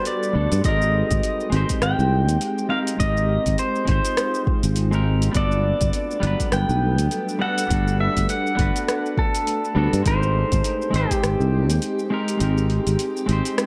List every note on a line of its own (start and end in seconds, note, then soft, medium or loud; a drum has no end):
0.00 0.31 G3 medium
0.00 0.61 G3 medium
0.00 0.31 B3 medium
0.00 0.32 D4 medium
0.00 0.33 F#4 medium
0.00 0.61 F#4 medium
0.00 0.61 A4 medium
0.00 0.34 B4 loud
0.00 0.61 B4 medium
0.05 0.61 D5 medium
0.05 open hi-hat medium
0.05 shaker medium
0.23 shaker soft
0.33 0.46 D2 medium
0.33 0.61 G3 medium
0.33 0.61 B3 medium
0.33 0.61 D4 medium
0.33 0.62 F#4 medium
0.33 0.62 A4 loud
0.52 0.60 G2 loud
0.52 open hi-hat soft
0.52 shaker medium
0.62 1.02 G#1 medium
0.62 1.48 G#3 medium
0.62 5.31 G#3 medium
0.62 1.49 C4 medium
0.62 5.31 C4 medium
0.62 1.50 D#4 medium
0.62 2.97 G4 medium
0.62 1.49 D#5 medium
0.62 kick loud
0.62 open hi-hat medium
0.62 shaker medium
0.67 1.51 G4 medium
0.67 1.52 A#4 medium
0.82 shaker soft
1.11 1.19 G#1 medium
1.11 kick loud
1.11 open hi-hat soft
1.11 shaker medium
1.23 open hi-hat medium
1.23 shaker medium
1.40 shaker soft
1.50 1.64 G#1 loud
1.50 2.66 G#3 medium
1.50 2.67 C4 medium
1.50 2.68 D#4 medium
1.50 open hi-hat medium
1.55 2.69 G4 medium
1.55 2.69 C5 medium
1.69 kick medium
1.69 open hi-hat soft
1.69 shaker medium
1.82 1.93 G#1 medium
1.82 2.70 G5 loud
1.82 cross-stick medium
1.82 open hi-hat medium
1.82 shaker medium
1.99 2.28 C2 loud
1.99 shaker soft
2.28 2.37 D#2 medium
2.28 open hi-hat soft
2.28 shaker medium
2.41 open hi-hat medium
2.41 shaker medium
2.58 shaker soft
2.69 2.95 G#3 medium
2.69 2.96 C4 medium
2.69 2.97 D#4 medium
2.69 2.97 G4 medium
2.69 2.97 A#4 medium
2.69 2.78 F5 loud
2.87 open hi-hat soft
2.87 shaker medium
2.97 3.37 G#1 medium
2.97 3.83 G#3 medium
2.97 3.84 C4 medium
2.97 3.85 D#4 medium
2.97 5.33 F4 medium
2.97 3.60 D#5 loud
2.97 kick loud
2.97 open hi-hat medium
2.97 shaker medium
3.02 3.86 G4 medium
3.02 3.87 A#4 medium
3.17 shaker soft
3.46 3.54 G#1 medium
3.46 kick medium
3.46 open hi-hat soft
3.46 shaker medium
3.58 3.88 C5 medium
3.58 open hi-hat medium
3.58 shaker medium
3.75 shaker soft
3.85 3.99 G#1 loud
3.85 4.88 G#3 medium
3.85 4.89 C4 medium
3.85 4.90 D#4 medium
3.85 4.43 C5 medium
3.85 kick loud
3.85 open hi-hat soft
3.90 4.91 G4 medium
3.90 4.91 C5 medium
4.05 open hi-hat soft
4.05 shaker medium
4.17 cross-stick medium
4.17 open hi-hat soft
4.17 shaker medium
4.34 shaker soft
4.47 kick loud
4.63 5.28 G#1 loud
4.63 open hi-hat soft
4.63 shaker medium
4.76 open hi-hat medium
4.76 shaker medium
4.91 5.31 G#3 medium
4.91 5.32 C4 medium
4.91 5.31 D#4 medium
4.91 5.32 G4 medium
4.91 5.33 A#4 medium
4.91 shaker soft
5.22 open hi-hat soft
5.22 shaker medium
5.31 5.72 G1 medium
5.31 5.34 G3 medium
5.31 10.02 A3 medium
5.31 6.19 B3 medium
5.31 6.20 D4 medium
5.31 10.02 A4 medium
5.31 kick loud
5.31 open hi-hat medium
5.31 shaker medium
5.35 10.02 D4 medium
5.35 6.21 F#4 medium
5.35 6.22 A4 medium
5.35 10.02 B4 medium
5.35 6.50 D5 loud
5.52 shaker soft
5.81 5.89 G1 medium
5.81 kick loud
5.81 open hi-hat soft
5.81 shaker medium
5.93 open hi-hat medium
5.93 shaker medium
6.11 shaker soft
6.20 6.34 G1 medium
6.20 7.36 G3 medium
6.20 7.37 B3 medium
6.20 7.38 D4 medium
6.20 open hi-hat medium
6.25 7.38 F#3 medium
6.25 7.40 B4 medium
6.40 kick medium
6.40 open hi-hat soft
6.40 shaker medium
6.52 6.64 G1 medium
6.52 7.41 G5 loud
6.52 cross-stick medium
6.52 open hi-hat medium
6.52 shaker medium
6.69 6.99 B1 loud
6.69 shaker soft
6.98 7.07 D2 loud
6.98 open hi-hat soft
6.98 shaker medium
7.11 open hi-hat medium
7.11 shaker medium
7.29 shaker soft
7.39 7.66 G3 medium
7.39 7.66 B3 medium
7.39 7.67 D4 medium
7.39 7.68 F#4 medium
7.39 7.68 A4 medium
7.39 8.00 F#5 loud
7.58 open hi-hat soft
7.58 shaker medium
7.67 8.07 G1 medium
7.67 8.54 G3 medium
7.67 7.71 B3 medium
7.67 8.55 D4 medium
7.67 kick loud
7.67 open hi-hat medium
7.71 8.56 F#4 medium
7.71 8.57 A4 medium
7.71 shaker medium
7.88 shaker soft
8.01 8.28 E5 loud
8.17 8.25 G1 medium
8.17 kick medium
8.17 open hi-hat soft
8.17 shaker medium
8.29 9.21 F#5 loud
8.29 open hi-hat medium
8.29 shaker medium
8.47 shaker soft
8.55 8.70 G1 medium
8.55 8.58 G3 medium
8.55 9.72 B3 medium
8.55 9.73 D4 medium
8.55 kick loud
8.55 open hi-hat medium
8.60 9.74 F#4 medium
8.60 9.75 B4 medium
8.76 open hi-hat soft
8.76 shaker medium
8.88 cross-stick medium
8.88 open hi-hat medium
8.88 shaker medium
9.06 shaker soft
9.18 10.02 A4 loud
9.18 kick loud
9.35 open hi-hat soft
9.35 shaker medium
9.47 open hi-hat medium
9.47 shaker medium
9.65 shaker soft
9.75 9.87 D2 medium
9.75 10.02 G3 medium
9.75 10.02 B3 medium
9.75 10.03 D4 medium
9.75 10.03 F#4 medium
9.75 10.04 A4 medium
9.93 10.01 G2 loud
9.93 open hi-hat soft
9.93 shaker medium
10.02 10.43 G#1 loud
10.02 10.89 G#3 medium
10.02 13.66 G#3 medium
10.02 13.66 C4 medium
10.02 10.91 D#4 medium
10.02 13.66 G4 loud
10.02 kick loud
10.02 open hi-hat medium
10.02 shaker medium
10.07 10.92 G4 medium
10.07 10.93 A#4 medium
10.07 10.91 C5 loud
10.23 shaker soft
10.52 10.60 G#1 loud
10.52 kick medium
10.52 open hi-hat soft
10.52 shaker medium
10.64 open hi-hat medium
10.64 shaker medium
10.82 shaker soft
10.91 11.05 G#1 loud
10.91 12.07 G#3 medium
10.91 12.08 C4 medium
10.91 12.09 D#4 medium
10.91 open hi-hat medium
10.96 12.09 G4 medium
10.96 13.66 G4 medium
10.96 12.10 C5 loud
11.11 kick medium
11.11 open hi-hat soft
11.11 shaker medium
11.24 11.35 G#1 medium
11.24 cross-stick medium
11.24 open hi-hat medium
11.24 shaker medium
11.40 11.70 C2 loud
11.40 shaker soft
11.70 11.78 D#2 loud
11.70 open hi-hat soft
11.70 shaker medium
11.82 open hi-hat medium
11.82 shaker medium
11.99 shaker soft
12.10 12.36 G#3 medium
12.10 12.38 C4 medium
12.10 12.38 D#4 medium
12.10 12.38 G4 medium
12.10 12.39 A#4 loud
12.28 open hi-hat soft
12.28 shaker medium
12.37 13.24 G#3 medium
12.37 13.25 C4 medium
12.37 13.26 D#4 medium
12.37 open hi-hat medium
12.37 shaker medium
12.41 12.78 G#1 loud
12.41 13.27 G4 medium
12.41 13.28 A#4 medium
12.58 shaker soft
12.70 open hi-hat soft
12.87 12.95 G#1 medium
12.87 open hi-hat soft
12.87 shaker medium
12.99 open hi-hat medium
12.99 shaker medium
13.17 shaker soft
13.26 13.40 G#1 medium
13.26 13.66 G#3 medium
13.26 13.66 C4 medium
13.26 13.66 D#4 medium
13.26 open hi-hat medium
13.31 13.66 G4 medium
13.31 13.66 C5 loud
13.45 open hi-hat soft
13.45 shaker medium
13.58 cross-stick medium
13.58 open hi-hat medium
13.58 shaker medium